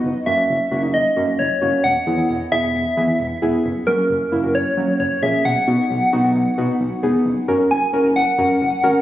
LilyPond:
<<
  \new Staff \with { instrumentName = "Soft synth lead" } { \time 4/4 \key fis \mixolydian \tempo 4 = 133 r8 e''4. dis''4 cis''4 | fis''4 r8 e''2 r8 | r8 ais'4. cis''4 cis''8 e''8 | fis''2. r4 |
\key fis \major r4 gis''4 fis''2 | }
  \new Staff \with { instrumentName = "Synth keys" } { \time 4/4 \key fis \mixolydian r8 <ais cis' fis'>16 <ais cis' fis'>8 r16 <ais cis' fis'>16 <ais cis' dis'>8 r16 <ais cis' fis'>8 r8 <ais cis' fis'>8 | r8 <b e' gis'>16 <b e' gis'>8 r16 <b e' gis'>16 <b e' gis'>8 r16 <b e' gis'>8 r8 <b e' gis'>8 | r8 <ais cis' fis'>16 <ais cis' fis'>8 r16 <ais cis' e'>16 <ais cis' fis'>8 r16 <ais cis' fis'>8 r8 <ais cis' gis'>8 | r8 <b dis' fis'>16 <b dis' fis'>8 r16 <b dis' fis'>16 <b dis' fis'>8 r16 <b dis' fis'>8 r8 <b dis' gis'>8 |
\key fis \major r8 <cis' fis' ais'>8 r8 <cis' fis' ais'>8 r8 <cis' fis' ais'>8 r8 <cis' fis' ais'>8 | }
  \new Staff \with { instrumentName = "Analog synth bass" } { \clef bass \time 4/4 \key fis \mixolydian fis,,16 r16 fis,16 r16 fis,,16 r16 fis,,16 fis,,16 fis,,16 r16 fis,16 r16 fis,,16 r16 fis,,16 r16 | e,,16 r16 e,16 r16 e,,16 r16 e,,16 e,,16 e,,16 r16 e,16 r16 e,,16 r16 e,,16 r16 | fis,,16 r16 fis,16 r16 fis,,16 r16 fis,,16 fis,,16 fis,,16 r16 fis,16 r16 fis,,16 r16 ais,,16 r16 | b,,16 r16 b,16 r16 b,,16 r16 b,,16 b,,16 b,,16 r16 b,16 r16 b,,16 r16 e,,16 r16 |
\key fis \major fis,,16 r16 fis,16 r16 fis,,16 r16 fis,,16 fis,,16 fis,,16 r16 fis,16 r16 fis,,16 r16 gis,,16 r16 | }
>>